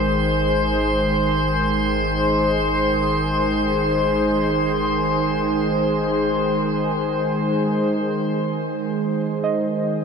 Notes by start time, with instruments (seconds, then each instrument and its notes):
Already playing: sub bass G#1, analog synth pad D#3 G#3 G#4 C5, synth texture C5 C6
9.44 synth keys D#5